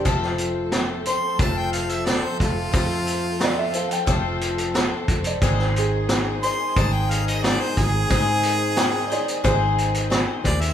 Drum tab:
HH |x-x-x-x-x-xxx-x-|x-x-x-xxx-xxx-xx|x-x-x-x-x-xxx-x-|x-x-x-xxx-xxx-xx|
SD |-o--o-------o---|----o-------o---|-o--o-------o---|----o-------o---|
BD |o-------o-----o-|o-------o-----o-|o-------o-----o-|o-------o-----o-|